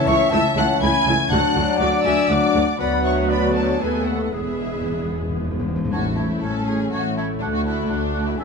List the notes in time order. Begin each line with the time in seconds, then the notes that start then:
Already playing: E3 C#4 E5
0.07 C#2 A3 E4 C#5 E5 C#6
0.30 C#2 E3 A3 C#4 E4 E5 A5 E6
0.56 C#2 A3 E4 F#5 A5 F#6
0.81 C#2 A3 E4 G#5 B5 G#6
1.06 C#2 A3 E4
1.29 D2 F#3 A3 D4 F#4 D5 F#5 A5 F#6
1.55 D2 A3 F#4
1.77 D2 D5 F#5
1.81 D2 A3 F#4 D6
2.04 D2 A3 F#4 E5 G#5 E6
2.29 D2 F#3 A3 D4 F#4 D5 F#5 D6
2.54 D2 A3 F#4
2.79 D2 F#3 B3 F#4 B4 D5 F#5 B5
3.03 C#5 E5 C#6
3.29 B4 D5 B5
3.54 A4 C#5 A5
3.80 D#2 A3 B3 G#4 A4 B4 G#5
4.06 F#4 A4 F#5
4.25 F#5
4.32 E1 E2 G#3 B3 E4 G#4 E5
4.41 E2
4.49 E2
4.58 E2
4.65 E2
4.73 E2
4.81 E2
4.89 E2
4.97 E2
5.04 E2
5.13 E2
5.21 E2
5.29 E2
5.36 E2
5.44 E2
5.51 E2
5.59 E2
5.68 E2
5.76 E2
5.85 E2
5.92 A1 A2 A3 C#4 F#4 C#5 A5
6.15 A3 E4 C#5 A5
6.40 A1 A2 C#4 A4 C#5 A5
6.65 A3 E4 G#4 C#5 A5
6.91 A1 A2 A3 F#4 C#5 A5
7.16 A3 E4 C#5 A5
7.40 D2 A3 D4 F#4 D5 F#5 A5
7.54 F#4
7.66 A3 E4 F#4 D5 F#5 A5
7.89 D2 D4 F#5 A5
8.13 A3 F#4 D5 F#5 A5
8.28 E4
8.37 D2 G#3 B3 D4 E4 G#4 E5 G#5